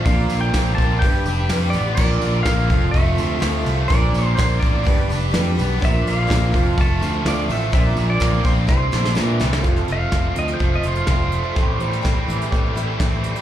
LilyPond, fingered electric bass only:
\new Staff \with { instrumentName = "Fingered electric bass" } { \clef bass \time 4/4 \key f \major \tempo 4 = 125 bes,,8 r8 bes,,8 bes,,8 g,,8 f,,8 f,8 a,,8 | bes,,8 bes,,8 bes,,8 f,,8 f,,8 d,8 d,8 c,8 | bes,,8 bes,,8 bes,,8 a,,8 g,,8 f,,8 f,8 b,,8 | bes,,8 bes,,8 bes,,8 f,,8 f,,8 d,8 d,8 a,,8 |
bes,,8 bes,,8 bes,,8 bes,,8 c,8 bes,,8 bes,8 c,8 | f,,8 f,,8 f,,8 d,8 f,,8 f,,8 f,,4 | a,,8 a,,8 a,,8 a,,8 a,,8 a,,8 a,,4 | }